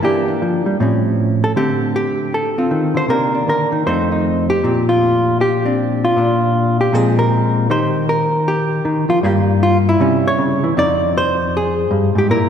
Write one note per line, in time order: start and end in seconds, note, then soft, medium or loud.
0.02 0.41 E3 medium
0.02 0.78 A#3 soft
0.02 0.27 D4 soft
0.02 1.43 G4 medium
0.28 0.78 D4 soft
0.42 0.66 F3 medium
0.66 0.79 G3 medium
0.80 1.54 A2 medium
0.80 1.57 F3 soft
0.80 1.58 C4 soft
0.80 1.56 C#4 soft
1.44 1.52 A4 medium
1.56 2.93 D3 medium
1.56 2.71 A3 soft
1.56 2.58 C4 soft
1.56 1.95 G4 medium
1.96 2.58 G4 medium
2.34 2.96 A4 medium
2.58 3.09 C4 soft
2.58 3.10 F4 soft
2.71 2.95 D#3 medium
2.94 3.08 D3 medium
2.94 3.05 C5 medium
3.08 3.47 C3 medium
3.08 3.71 D#3 soft
3.08 3.84 A#3 soft
3.08 3.34 D4 soft
3.08 3.48 A#4 medium
3.35 3.85 D4 soft
3.48 3.72 D3 medium
3.48 3.86 A#4 medium
3.72 3.86 D#3 medium
3.86 4.63 F2 medium
3.86 4.61 A3 soft
3.86 4.64 C4 soft
3.86 4.11 D#4 soft
3.86 4.63 C5 medium
4.12 4.49 D#4 soft
4.50 5.26 G4 medium
4.63 6.15 A#2 medium
4.63 6.84 F3 soft
4.63 5.65 C4 soft
4.89 5.40 F4 medium
5.41 6.03 G4 medium
5.65 6.20 C4 soft
5.65 6.15 D4 soft
6.05 6.80 F4 medium
6.17 6.92 A#2 medium
6.17 6.92 D4 soft
6.81 6.95 G4 medium
6.93 7.69 A#2 medium
6.93 7.68 F3 soft
6.93 7.70 G#3 soft
6.93 7.71 C4 soft
6.93 7.18 G#4 medium
7.19 7.70 A#4 medium
7.70 8.84 D#3 medium
7.70 9.21 D#4 soft
7.70 8.48 G4 soft
7.70 8.08 C5 medium
8.09 8.85 A#4 medium
8.48 9.23 G4 medium
8.85 9.08 D#3 medium
9.09 9.23 F3 medium
9.09 9.18 F4 medium
9.23 9.98 G2 medium
9.23 10.00 G3 soft
9.23 9.99 A#3 medium
9.23 9.62 G4 loud
9.63 9.77 F4 medium
9.89 10.63 E4 medium
10.00 10.74 C3 medium
10.00 10.62 G3 soft
10.00 10.75 C#4 medium
10.28 10.78 C#5 loud
10.38 10.62 C#3 medium
10.64 10.77 E3 medium
10.77 11.90 F2 medium
10.77 12.28 C4 medium
10.77 12.28 D#4 soft
10.77 11.15 D5 loud
11.18 11.92 C5 loud
11.57 12.17 G#4 medium
11.91 12.15 G2 medium
12.15 12.29 G#2 medium
12.15 12.30 G4 medium
12.30 12.49 A#2 medium
12.30 12.49 A#3 medium
12.30 12.49 E4 soft
12.30 12.49 A#4 medium